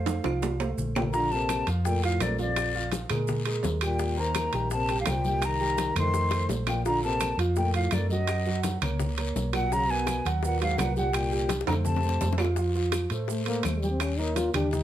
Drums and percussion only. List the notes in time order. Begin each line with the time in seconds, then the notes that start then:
0.06 low bongo, high conga, high timbale, maracas
0.24 low bongo, high timbale, claves, maracas
0.42 low bongo, high conga, low timbale, maracas
0.60 low timbale, maracas
0.78 low conga, maracas
0.95 low bongo, low timbale, claves, maracas
1.02 low conga
1.13 high bongo, high conga, long guiro, maracas
1.31 high conga, maracas
1.49 high bongo, high conga, high timbale, short guiro, claves, maracas
1.67 high bongo, high conga, high timbale, short guiro, maracas
1.84 high bongo, high conga, long guiro, maracas
2.03 high bongo, high conga, high timbale, maracas
2.20 high bongo, low bongo, high conga, high timbale, low timbale, short guiro, claves, maracas
2.38 high bongo, high conga, short guiro, maracas
2.56 high bongo, high conga, high timbale, long guiro, claves, maracas
2.75 high conga, maracas
2.92 high bongo, high conga, high timbale, short guiro, maracas
3.10 high bongo, low conga, high timbale, short guiro, claves, maracas
3.27 high bongo, high conga, low conga, long guiro, maracas
3.45 high bongo, high conga, high timbale, maracas
3.63 high bongo, low bongo, high conga, low timbale, short guiro, maracas
3.81 high bongo, high timbale, short guiro, claves, maracas
3.99 high bongo, high conga, long guiro, maracas
4.17 high conga, maracas
4.35 high bongo, high conga, high timbale, short guiro, claves, maracas
4.53 high bongo, high conga, high timbale, short guiro, maracas
4.70 high bongo, high conga, long guiro, maracas
4.89 high bongo, high conga, high timbale, maracas
5.06 high bongo, low bongo, high conga, high timbale, low timbale, short guiro, claves, maracas
5.24 high bongo, high conga, short guiro, maracas
5.42 high bongo, high conga, high timbale, long guiro, claves, maracas
5.60 high conga, maracas
5.78 high bongo, high conga, high timbale, short guiro, maracas
5.96 high bongo, low conga, high timbale, short guiro, claves, maracas
6.14 high bongo, high conga, long guiro, maracas
6.31 high bongo, high conga, high timbale, maracas
6.49 high bongo, high conga, low timbale, short guiro, maracas
6.67 low bongo, high conga, high timbale, short guiro, claves, maracas
6.85 high bongo, high conga, long guiro, maracas
7.03 high conga, maracas
7.20 high bongo, high conga, high timbale, short guiro, claves, maracas
7.39 high bongo, high conga, high timbale, short guiro, maracas
7.56 high bongo, high conga, long guiro, maracas
7.74 high bongo, high conga, high timbale, maracas
7.91 high bongo, low bongo, high conga, high timbale, short guiro, claves, maracas
8.10 high bongo, high conga, short guiro, maracas
8.27 high bongo, high timbale, long guiro, claves, maracas
8.46 high conga, maracas
8.63 high bongo, high conga, high timbale, short guiro, maracas
8.82 high bongo, low conga, high timbale, short guiro, claves, maracas
9.00 high bongo, high conga, low conga, long guiro, maracas
9.18 high bongo, high conga, high timbale, maracas
9.36 high bongo, low bongo, high conga, short guiro, maracas
9.53 high bongo, high conga, high timbale, short guiro, claves, maracas
9.72 high bongo, high conga, long guiro, maracas
9.90 high conga, maracas
10.07 high bongo, high conga, high timbale, short guiro, claves, maracas
10.25 high bongo, high conga, high timbale, short guiro, maracas
10.43 high bongo, high conga, long guiro, maracas
10.61 high bongo, high conga, high timbale, maracas
10.78 high bongo, low bongo, high conga, high timbale, low timbale, short guiro, claves, maracas
10.96 high bongo, high conga, short guiro, maracas
11.13 high bongo, high conga, high timbale, long guiro, claves, maracas
11.32 high conga, maracas
11.49 high bongo, high conga, high timbale, short guiro, maracas
11.61 high bongo
11.67 low conga, high timbale, short guiro, claves, maracas
11.72 low bongo
11.85 low bongo, high conga, low conga, long guiro, maracas
11.97 low bongo
12.03 high conga, maracas
12.09 low bongo
12.21 low bongo, high conga, low timbale, short guiro, maracas
12.33 low bongo
12.38 low timbale, short guiro, claves, maracas
12.44 low bongo
12.56 high bongo, high conga, long guiro, maracas
12.75 high conga, maracas
12.92 high bongo, high conga, high timbale, short guiro, claves, maracas
13.10 high bongo, high conga, high timbale, short guiro, maracas
13.28 high bongo, high conga, long guiro, maracas
13.46 high bongo, high conga, high timbale, maracas
13.63 high bongo, low bongo, high conga, high timbale, low timbale, short guiro, claves, maracas
13.83 high bongo, high conga, short guiro, maracas
14.00 high bongo, high timbale, long guiro, claves, maracas
14.18 high conga, maracas
14.36 high bongo, high conga, high timbale, short guiro, maracas
14.54 high bongo, low conga, high timbale, short guiro, claves, maracas
14.71 high bongo, high conga, low conga, long guiro, maracas